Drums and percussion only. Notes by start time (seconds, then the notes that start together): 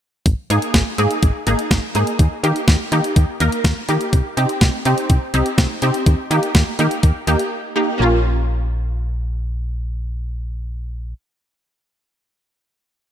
0.26 kick, closed hi-hat
0.50 closed hi-hat
0.62 closed hi-hat
0.74 kick, snare, closed hi-hat
0.98 closed hi-hat
1.11 closed hi-hat
1.23 kick, closed hi-hat
1.47 closed hi-hat
1.59 closed hi-hat
1.71 kick, snare, closed hi-hat
1.95 closed hi-hat
2.07 closed hi-hat
2.19 kick, closed hi-hat
2.44 closed hi-hat
2.56 closed hi-hat
2.68 kick, snare, closed hi-hat
2.92 closed hi-hat
3.04 closed hi-hat
3.16 kick, closed hi-hat
3.40 closed hi-hat
3.52 closed hi-hat
3.64 kick, snare, closed hi-hat
3.89 closed hi-hat
4.01 closed hi-hat
4.13 kick, closed hi-hat
4.37 closed hi-hat
4.49 closed hi-hat
4.61 kick, snare, closed hi-hat
4.85 closed hi-hat
4.98 closed hi-hat
5.10 kick, closed hi-hat
5.34 closed hi-hat
5.46 closed hi-hat
5.58 kick, snare, closed hi-hat
5.82 closed hi-hat
5.94 closed hi-hat
6.06 kick, closed hi-hat
6.31 closed hi-hat
6.43 closed hi-hat
6.55 kick, snare, closed hi-hat
6.79 closed hi-hat
6.91 closed hi-hat
7.03 kick, closed hi-hat
7.27 closed hi-hat
7.39 closed hi-hat